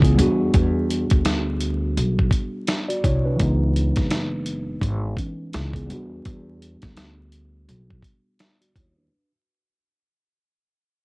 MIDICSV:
0, 0, Header, 1, 4, 480
1, 0, Start_track
1, 0, Tempo, 714286
1, 364, Time_signature, 4, 2, 24, 8
1, 7424, End_track
2, 0, Start_track
2, 0, Title_t, "Tine electric piano"
2, 0, Program_c, 0, 4
2, 0, Control_c, 0, 64, 127
2, 0, Note_on_c, 0, 52, 57
2, 0, Note_on_c, 0, 56, 64
2, 0, Note_on_c, 0, 61, 67
2, 0, Note_on_c, 0, 64, 61
2, 24, Note_on_c, 0, 68, 66
2, 28, Note_on_c, 0, 59, 57
2, 97, Note_on_c, 0, 55, 74
2, 106, Note_off_c, 0, 59, 0
2, 114, Note_on_c, 0, 59, 68
2, 129, Note_on_c, 0, 62, 69
2, 133, Control_c, 0, 64, 0
2, 134, Note_off_c, 0, 56, 0
2, 134, Note_off_c, 0, 61, 0
2, 136, Note_off_c, 0, 52, 0
2, 138, Note_off_c, 0, 64, 0
2, 146, Note_on_c, 0, 66, 84
2, 252, Note_off_c, 0, 68, 0
2, 264, Control_c, 0, 64, 127
2, 1780, Note_off_c, 0, 62, 0
2, 1788, Note_off_c, 0, 66, 0
2, 1938, Note_on_c, 0, 74, 66
2, 1943, Note_on_c, 0, 66, 57
2, 2004, Note_off_c, 0, 55, 0
2, 2012, Note_off_c, 0, 59, 0
2, 2036, Note_off_c, 0, 74, 0
2, 2038, Note_off_c, 0, 66, 0
2, 2041, Note_on_c, 0, 73, 75
2, 2045, Note_on_c, 0, 64, 59
2, 2176, Note_off_c, 0, 73, 0
2, 2178, Note_off_c, 0, 64, 0
2, 2185, Note_on_c, 0, 71, 70
2, 2189, Note_on_c, 0, 62, 53
2, 2255, Note_on_c, 0, 52, 75
2, 2272, Note_on_c, 0, 56, 65
2, 2287, Note_on_c, 0, 59, 68
2, 2293, Control_c, 0, 64, 0
2, 2304, Note_on_c, 0, 63, 79
2, 2391, Control_c, 0, 64, 127
2, 2413, Note_off_c, 0, 71, 0
2, 2415, Note_off_c, 0, 62, 0
2, 3445, Note_off_c, 0, 52, 0
2, 3454, Note_off_c, 0, 56, 0
2, 3462, Note_off_c, 0, 59, 0
2, 3470, Note_off_c, 0, 63, 0
2, 3484, Note_on_c, 0, 61, 65
2, 3488, Note_on_c, 0, 52, 56
2, 3712, Note_off_c, 0, 61, 0
2, 3714, Note_off_c, 0, 52, 0
2, 3725, Note_on_c, 0, 64, 60
2, 3729, Note_on_c, 0, 56, 65
2, 3858, Note_off_c, 0, 64, 0
2, 3860, Note_off_c, 0, 56, 0
2, 3864, Note_on_c, 0, 68, 67
2, 3868, Note_on_c, 0, 59, 57
2, 3938, Note_on_c, 0, 55, 75
2, 3946, Note_off_c, 0, 59, 0
2, 3954, Note_on_c, 0, 59, 66
2, 3970, Note_on_c, 0, 62, 68
2, 3972, Control_c, 0, 64, 0
2, 3985, Note_on_c, 0, 66, 81
2, 4092, Note_off_c, 0, 68, 0
2, 4105, Control_c, 0, 64, 127
2, 5620, Note_off_c, 0, 62, 0
2, 5628, Note_off_c, 0, 66, 0
2, 5781, Note_on_c, 0, 74, 66
2, 5785, Note_on_c, 0, 66, 57
2, 5844, Note_off_c, 0, 55, 0
2, 5852, Note_off_c, 0, 59, 0
2, 5877, Note_off_c, 0, 74, 0
2, 5879, Note_off_c, 0, 66, 0
2, 5883, Note_on_c, 0, 73, 69
2, 5887, Note_on_c, 0, 64, 58
2, 6017, Note_off_c, 0, 73, 0
2, 6019, Note_off_c, 0, 64, 0
2, 6026, Note_on_c, 0, 71, 70
2, 6030, Note_on_c, 0, 62, 53
2, 6132, Control_c, 0, 64, 0
2, 6253, Note_off_c, 0, 71, 0
2, 6255, Note_off_c, 0, 62, 0
2, 7424, End_track
3, 0, Start_track
3, 0, Title_t, "Upright bass"
3, 0, Program_c, 1, 32
3, 0, Note_on_c, 1, 37, 93
3, 93, Note_off_c, 1, 37, 0
3, 123, Note_on_c, 1, 40, 104
3, 333, Note_off_c, 1, 40, 0
3, 363, Note_on_c, 1, 40, 106
3, 696, Note_off_c, 1, 40, 0
3, 748, Note_on_c, 1, 38, 83
3, 1299, Note_off_c, 1, 38, 0
3, 1325, Note_on_c, 1, 35, 88
3, 1534, Note_off_c, 1, 35, 0
3, 2043, Note_on_c, 1, 36, 89
3, 2253, Note_off_c, 1, 36, 0
3, 2284, Note_on_c, 1, 37, 96
3, 2616, Note_off_c, 1, 37, 0
3, 2668, Note_on_c, 1, 30, 80
3, 3219, Note_off_c, 1, 30, 0
3, 3236, Note_on_c, 1, 32, 93
3, 3449, Note_off_c, 1, 32, 0
3, 3724, Note_on_c, 1, 37, 98
3, 3934, Note_off_c, 1, 37, 0
3, 3964, Note_on_c, 1, 40, 94
3, 4174, Note_off_c, 1, 40, 0
3, 4204, Note_on_c, 1, 40, 102
3, 4537, Note_off_c, 1, 40, 0
3, 4589, Note_on_c, 1, 38, 81
3, 5139, Note_off_c, 1, 38, 0
3, 5164, Note_on_c, 1, 35, 91
3, 5374, Note_off_c, 1, 35, 0
3, 5883, Note_on_c, 1, 39, 89
3, 6093, Note_off_c, 1, 39, 0
3, 7424, End_track
4, 0, Start_track
4, 0, Title_t, "Drums"
4, 13, Note_on_c, 9, 36, 89
4, 30, Note_on_c, 9, 42, 60
4, 80, Note_off_c, 9, 36, 0
4, 97, Note_off_c, 9, 42, 0
4, 125, Note_on_c, 9, 42, 90
4, 192, Note_off_c, 9, 42, 0
4, 361, Note_on_c, 9, 42, 91
4, 363, Note_on_c, 9, 36, 104
4, 428, Note_off_c, 9, 42, 0
4, 431, Note_off_c, 9, 36, 0
4, 608, Note_on_c, 9, 42, 77
4, 675, Note_off_c, 9, 42, 0
4, 740, Note_on_c, 9, 42, 50
4, 748, Note_on_c, 9, 36, 94
4, 807, Note_off_c, 9, 42, 0
4, 815, Note_off_c, 9, 36, 0
4, 839, Note_on_c, 9, 42, 95
4, 844, Note_on_c, 9, 38, 112
4, 906, Note_off_c, 9, 42, 0
4, 911, Note_off_c, 9, 38, 0
4, 1078, Note_on_c, 9, 42, 64
4, 1145, Note_off_c, 9, 42, 0
4, 1327, Note_on_c, 9, 42, 88
4, 1394, Note_off_c, 9, 42, 0
4, 1471, Note_on_c, 9, 36, 94
4, 1538, Note_off_c, 9, 36, 0
4, 1552, Note_on_c, 9, 36, 94
4, 1563, Note_on_c, 9, 42, 76
4, 1619, Note_off_c, 9, 36, 0
4, 1630, Note_off_c, 9, 42, 0
4, 1797, Note_on_c, 9, 42, 95
4, 1804, Note_on_c, 9, 38, 115
4, 1865, Note_off_c, 9, 42, 0
4, 1871, Note_off_c, 9, 38, 0
4, 1950, Note_on_c, 9, 42, 60
4, 2017, Note_off_c, 9, 42, 0
4, 2043, Note_on_c, 9, 36, 102
4, 2045, Note_on_c, 9, 42, 91
4, 2110, Note_off_c, 9, 36, 0
4, 2112, Note_off_c, 9, 42, 0
4, 2281, Note_on_c, 9, 42, 93
4, 2284, Note_on_c, 9, 36, 108
4, 2348, Note_off_c, 9, 42, 0
4, 2351, Note_off_c, 9, 36, 0
4, 2528, Note_on_c, 9, 42, 74
4, 2595, Note_off_c, 9, 42, 0
4, 2660, Note_on_c, 9, 42, 50
4, 2664, Note_on_c, 9, 38, 37
4, 2668, Note_on_c, 9, 36, 90
4, 2727, Note_off_c, 9, 42, 0
4, 2731, Note_off_c, 9, 38, 0
4, 2735, Note_off_c, 9, 36, 0
4, 2759, Note_on_c, 9, 42, 95
4, 2763, Note_on_c, 9, 38, 114
4, 2826, Note_off_c, 9, 42, 0
4, 2831, Note_off_c, 9, 38, 0
4, 2997, Note_on_c, 9, 42, 63
4, 3064, Note_off_c, 9, 42, 0
4, 3236, Note_on_c, 9, 36, 93
4, 3246, Note_on_c, 9, 42, 89
4, 3303, Note_off_c, 9, 36, 0
4, 3313, Note_off_c, 9, 42, 0
4, 3472, Note_on_c, 9, 36, 94
4, 3484, Note_on_c, 9, 42, 74
4, 3540, Note_off_c, 9, 36, 0
4, 3551, Note_off_c, 9, 42, 0
4, 3718, Note_on_c, 9, 42, 94
4, 3725, Note_on_c, 9, 38, 114
4, 3785, Note_off_c, 9, 42, 0
4, 3792, Note_off_c, 9, 38, 0
4, 3854, Note_on_c, 9, 36, 88
4, 3870, Note_on_c, 9, 42, 59
4, 3921, Note_off_c, 9, 36, 0
4, 3937, Note_off_c, 9, 42, 0
4, 3965, Note_on_c, 9, 42, 89
4, 4032, Note_off_c, 9, 42, 0
4, 4202, Note_on_c, 9, 42, 92
4, 4204, Note_on_c, 9, 36, 102
4, 4269, Note_off_c, 9, 42, 0
4, 4271, Note_off_c, 9, 36, 0
4, 4450, Note_on_c, 9, 42, 75
4, 4517, Note_off_c, 9, 42, 0
4, 4581, Note_on_c, 9, 42, 49
4, 4585, Note_on_c, 9, 38, 38
4, 4589, Note_on_c, 9, 36, 89
4, 4649, Note_off_c, 9, 42, 0
4, 4653, Note_off_c, 9, 38, 0
4, 4656, Note_off_c, 9, 36, 0
4, 4681, Note_on_c, 9, 42, 94
4, 4685, Note_on_c, 9, 38, 107
4, 4748, Note_off_c, 9, 42, 0
4, 4753, Note_off_c, 9, 38, 0
4, 4920, Note_on_c, 9, 42, 61
4, 4987, Note_off_c, 9, 42, 0
4, 5167, Note_on_c, 9, 42, 86
4, 5234, Note_off_c, 9, 42, 0
4, 5312, Note_on_c, 9, 36, 94
4, 5379, Note_off_c, 9, 36, 0
4, 5393, Note_on_c, 9, 36, 90
4, 5405, Note_on_c, 9, 42, 77
4, 5460, Note_off_c, 9, 36, 0
4, 5472, Note_off_c, 9, 42, 0
4, 5639, Note_on_c, 9, 42, 95
4, 5646, Note_on_c, 9, 38, 113
4, 5706, Note_off_c, 9, 42, 0
4, 5713, Note_off_c, 9, 38, 0
4, 5790, Note_on_c, 9, 42, 60
4, 5857, Note_off_c, 9, 42, 0
4, 5883, Note_on_c, 9, 36, 98
4, 5886, Note_on_c, 9, 42, 86
4, 5951, Note_off_c, 9, 36, 0
4, 5953, Note_off_c, 9, 42, 0
4, 7424, End_track
0, 0, End_of_file